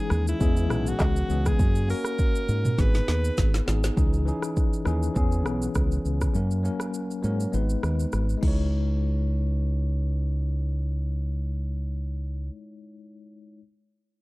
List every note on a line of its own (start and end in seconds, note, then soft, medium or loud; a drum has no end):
0.00 0.39 E3 medium
0.00 0.40 G#3 medium
0.00 0.41 C#4 medium
0.00 0.42 D#4 medium
0.00 0.24 G#4 loud
0.00 0.42 G#4 medium
0.10 0.32 D#2 medium
0.10 cross-stick loud
0.10 shaker medium
0.27 0.90 E4 loud
0.27 shaker medium
0.39 0.71 E2 loud
0.39 1.13 E3 medium
0.39 1.13 G#3 medium
0.39 1.13 B3 medium
0.39 1.13 C#4 medium
0.39 1.14 G#4 medium
0.39 kick loud
0.39 shaker medium
0.57 shaker medium
0.70 0.92 B1 medium
0.70 cross-stick loud
0.70 mid tom medium
0.70 shaker soft
0.87 1.49 F#4 loud
0.87 shaker medium
0.99 1.21 C#2 loud
0.99 kick medium
0.99 cross-stick medium
0.99 clap loud
0.99 shaker medium
1.16 shaker medium
1.28 1.51 C#2 medium
1.28 1.52 E3 medium
1.28 1.52 G#3 medium
1.28 1.52 B3 medium
1.28 1.53 C#4 medium
1.28 1.53 G#4 medium
1.28 shaker medium
1.46 1.90 G#4 loud
1.46 kick medium
1.46 cross-stick medium
1.46 shaker medium
1.58 1.92 F#2 loud
1.58 1.82 A#3 medium
1.58 1.82 C#4 medium
1.58 1.83 F#4 medium
1.58 kick loud
1.58 shaker medium
1.75 shaker medium
1.88 2.76 A#3 medium
1.88 2.77 C#4 medium
1.88 2.77 F#4 medium
1.88 2.81 A#4 loud
1.88 open hi-hat soft
1.88 shaker soft
2.05 cross-stick medium
2.05 shaker medium
2.19 kick loud
2.19 shaker medium
2.35 shaker medium
2.49 2.70 G#2 medium
2.49 shaker medium
2.65 mid tom medium
2.65 shaker medium
2.77 3.00 G#1 loud
2.77 3.50 B3 medium
2.77 3.51 D#4 medium
2.77 3.51 G#4 medium
2.77 3.68 B4 loud
2.77 kick loud
2.77 snare medium
2.77 shaker medium
2.94 snare medium
2.94 shaker medium
3.08 3.29 D#2 medium
3.08 snare medium
3.08 shaker medium
3.25 shaker medium
3.37 3.59 G#1 medium
3.37 kick medium
3.37 snare medium
3.37 shaker medium
3.54 snare medium
3.54 shaker medium
3.66 3.89 G#1 loud
3.66 3.89 B3 medium
3.66 3.90 D#4 medium
3.66 3.91 G#4 medium
3.66 snare loud
3.66 shaker medium
3.84 snare loud
3.84 shaker loud
3.96 4.30 C#2 loud
3.96 4.19 E3 medium
3.96 4.20 C#4 medium
3.96 4.20 D#4 medium
3.96 4.20 G#4 medium
3.96 kick loud
3.96 shaker medium
4.13 shaker soft
4.26 4.71 E3 medium
4.26 4.72 C#4 medium
4.26 4.72 D#4 medium
4.26 4.73 G#4 loud
4.26 shaker soft
4.42 cross-stick medium
4.42 shaker medium
4.57 kick loud
4.57 shaker medium
4.73 shaker medium
4.85 5.07 D#2 medium
4.85 5.13 E3 medium
4.85 5.15 C#4 medium
4.85 5.16 D#4 medium
4.85 5.16 G#4 loud
4.85 cross-stick medium
4.85 shaker medium
5.03 shaker medium
5.15 5.46 E2 loud
5.15 6.11 E3 medium
5.15 6.11 B3 medium
5.15 6.12 C#4 medium
5.15 6.12 G#4 loud
5.15 kick loud
5.15 shaker medium
5.32 shaker medium
5.46 5.67 B1 medium
5.46 cross-stick loud
5.46 shaker soft
5.62 shaker medium
5.75 5.97 C#2 loud
5.75 kick medium
5.75 cross-stick loud
5.75 shaker medium
5.92 shaker medium
6.05 6.26 C#2 medium
6.05 shaker medium
6.21 kick medium
6.21 cross-stick medium
6.21 shaker medium
6.34 6.68 F#2 loud
6.34 6.57 F#3 medium
6.34 6.57 A#3 medium
6.34 6.58 C#4 medium
6.34 6.58 A#4 medium
6.34 shaker medium
6.51 shaker soft
6.63 7.09 F#3 medium
6.63 7.09 A#3 medium
6.63 7.10 C#4 medium
6.63 7.10 A#4 loud
6.63 shaker soft
6.80 cross-stick medium
6.80 shaker medium
6.94 shaker medium
7.11 shaker medium
7.23 7.45 G#2 medium
7.23 7.53 F#3 medium
7.23 7.53 A#3 medium
7.23 7.54 C#4 medium
7.23 7.54 A#4 medium
7.23 shaker soft
7.40 shaker medium
7.52 7.75 G#1 loud
7.52 8.37 G#3 medium
7.52 8.42 B3 medium
7.52 8.40 D#4 medium
7.52 8.43 B4 loud
7.52 shaker medium
7.69 shaker medium
7.83 8.05 D#2 medium
7.83 cross-stick loud
7.83 shaker soft
8.00 shaker medium
8.12 8.34 G#1 medium
8.12 cross-stick medium
8.12 shaker medium
8.29 shaker medium
8.38 12.44 G#3 medium
8.38 12.47 D#4 medium
8.43 12.49 C#2 medium
8.43 12.50 E4 medium
8.43 kick loud
8.43 crash medium
8.48 12.54 C#5 medium